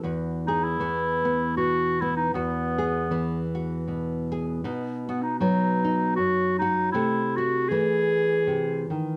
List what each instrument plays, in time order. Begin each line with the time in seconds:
Already playing: nylon-string guitar E3
0.03 nylon-string guitar E2 F#4
0.46 clarinet D#4, nylon-string guitar G#4
0.64 clarinet E4
0.80 nylon-string guitar E3 B3
1.25 nylon-string guitar B3
1.57 nylon-string guitar B2, clarinet F#4
2.00 nylon-string guitar B3, clarinet E4
2.16 clarinet D#4
2.33 nylon-string guitar E2 F#4, clarinet B3
2.78 nylon-string guitar G#4
3.11 nylon-string guitar E3 B3
3.55 nylon-string guitar F#4
3.88 nylon-string guitar B2
4.32 nylon-string guitar G#4
4.64 nylon-string guitar B2 D#4
5.07 clarinet B3, nylon-string guitar F#4
5.22 clarinet D#4
5.39 nylon-string guitar F#3 B3, clarinet D#4
5.84 nylon-string guitar D#4
6.16 nylon-string guitar F#2, clarinet F#4
6.58 clarinet D#4, nylon-string guitar F#4
6.91 nylon-string guitar C3 A3, clarinet E4
7.36 nylon-string guitar E4, clarinet F#4
7.68 nylon-string guitar E3 A3, clarinet G#4
8.47 nylon-string guitar C3
8.90 nylon-string guitar D#3